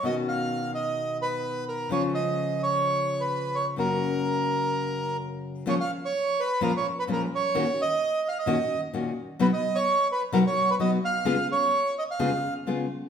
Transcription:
<<
  \new Staff \with { instrumentName = "Bandoneon" } { \time 4/4 \key ais \phrygian \tempo 4 = 129 dis''8 eis''4 dis''4 b'4 ais'8 | cis''8 dis''4 cis''4~ cis''16 b'8. cis''8 | ais'2. r4 | cis''16 eis''8 cis''8. b'8 ais'16 cis''8 b'16 ais'8 cis''8~ |
cis''8 dis''4 eis''16 dis''4 r4 r16 | b'16 dis''8 cis''8. b'8 ais'16 cis''8 b'16 dis''8 eis''8~ | eis''8 cis''4 dis''16 eis''4 r4 r16 | }
  \new Staff \with { instrumentName = "Nylon-string guitar" } { \time 4/4 \key ais \phrygian <b, dis cis' fis'>1 | <cis eis gis cis' eis'>1 | <fis, cis ais cis' fis'>1 | <ais, eis gis cis' eis'>8 r4. <ais, eis gis cis' eis'>8 r8 <ais, eis gis cis' eis'>8 r8 |
<ais, dis ais cis' fis'>8 r4. <ais, dis ais cis' fis'>8 r8 <ais, dis ais cis' fis'>8 r8 | <b, fis b dis' fis'>8 r4. <b, fis b dis' fis'>8 r8 <b, fis b dis' fis'>8 r8 | <cis gis b eis' gis'>8 r4. <cis gis b eis' gis'>8 r8 <cis gis b eis' gis'>8 r8 | }
>>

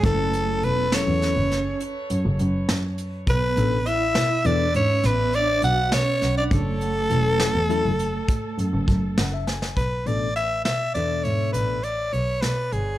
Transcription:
<<
  \new Staff \with { instrumentName = "Soprano saxophone" } { \time 11/8 \key b \dorian \tempo 4 = 102 a'4 b'8 cis''4. r2 r8 | b'4 e''4 d''8 cis''8 b'8 d''8 fis''8 cis''8. d''16 | a'1~ a'8 r4 | b'8 d''8 e''8 e''8 d''8 cis''8 b'8 d''8 cis''8 b'8 gis'8 | }
  \new Staff \with { instrumentName = "Tine electric piano" } { \time 11/8 \key b \dorian <fis cis' e' a'>4. <fis cis' e' a'>8 r2. r8 | r8 <b, b d' a'>8 r4 <b, b d' a'>8 r2. | r4 <fis cis' e' a'>8 r8 <fis cis' e' a'>8 r2 fis''16 e''16 gis''8 | r8 <b, b d' a'>8 r4 <b, b d' a'>4. r2 | }
  \new Staff \with { instrumentName = "Vibraphone" } { \time 11/8 \key b \dorian a4 b8 cis'4. r2 r8 | b4 e'4 d'8 cis'8 b8 d'8 fis'8 cis'8. d'16 | a1~ a8 r4 | r1 r4. | }
  \new Staff \with { instrumentName = "Double bass" } { \clef bass \time 11/8 \key b \dorian fis,,4 e,,8 r16 e,16 r16 fis,,8 r8. fis,16 fis,,16 fis,8 fis,4 | b,,16 r16 a,,4 b,8 e,8 gis,8 a,,4 b,,8 b,16 r16 b,,16 r16 | fis,,4 e,,8 r16 e,16 r16 fis,,8 r8. fis,16 fis,,16 fis,8 fis,,4 | b,,16 r16 a,,4 b,8 e,8 gis,8 a,,4 b,,8 b,16 r16 g,,16 r16 | }
  \new DrumStaff \with { instrumentName = "Drums" } \drummode { \time 11/8 <hh bd>8 hh8 hh8 <hh sn>8 <hh sn>8 <hh sn>8 hh8 hh8 hh8 <hh sn>8 hh8 | <hh bd>8 hh8 hh8 <hh sn>8 hh8 hh8 <hh sn>8 hh8 hh8 <hh sn>8 <hh sn>8 | <hh bd>8 hh8 hh8 <hh sn>8 hh8 hh8 <hh bd>8 hh8 <hh bd>8 <hh sn>8 sn16 sn16 | <hh bd>8 hh8 hh8 <hh sn>8 hh8 hh8 hh8 hh8 hh8 <hh sn>8 hh8 | }
>>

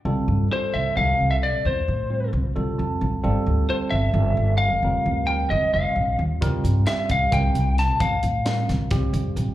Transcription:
<<
  \new Staff \with { instrumentName = "Lead electric guitar" } { \time 7/8 \key c \mixolydian \tempo 4 = 132 r4 c''8 e''8 f''8. e''16 d''8 | c''4. r2 | r4 c''8 e''4. f''8~ | f''4 g''8 ees''8 f''4 r8 |
r4 e''8 f''8 g''4 a''8 | f''4. r2 | }
  \new Staff \with { instrumentName = "Tine electric piano" } { \time 7/8 \key c \mixolydian << { r2. r8 | r2 r8 a''4 | r2. r8 | r2. r8 |
r2. r8 | r2. r8 | } \\ { <g c' f' a'>4 <g c' f' a'>4 <g c' f' a'>4.~ | <g c' f' a'>8 r8 <g c' f' c''>4 <g c' f' a'>4. | <g c' f' a'>4 <g c' f' a'>4 <g c' f' a'>4. | <g c' f' bes'>4 <g c' f' bes'>4 <g c' f' c''>4. |
<g c' f' bes'>4 <g c' f' g'>4 <g c' f' bes'>4.~ | <g c' f' bes'>8 r8 <g c' f' bes'>4 <g c' f' g'>4. | } >> }
  \new Staff \with { instrumentName = "Upright bass" } { \clef bass \time 7/8 \key c \mixolydian c,16 r16 g,8 r8 c,8 c,8 c,8. bes,,16 | e,16 r16 a,4 c,16 r16 c,16 r16 f,8 bes,,16 r16 | g,,16 r16 d,8 r8 g,,8 g,,8 g,,8. f,,16 | f,,16 r16 d,4 f,,16 r16 f,,16 r16 bes,,8 ees,16 r16 |
c,16 r16 g,8 r8 c,8 c,8 c,8. bes,,16 | e,16 r16 a,4 c,16 r16 c,16 r16 f,8 bes,,16 r16 | }
  \new DrumStaff \with { instrumentName = "Drums" } \drummode { \time 7/8 r4 r4 r4. | r4 r4 r4. | r4 r4 r4. | r4 r4 r4. |
<hh bd>8 hh8 <hh sn>8 <hh bd>8 <hh bd>8 hh8 <hh sn>8 | <hh bd>8 hh8 <hh sn>8 <hh sn>8 <hh bd sn>8 hh8 hh8 | }
>>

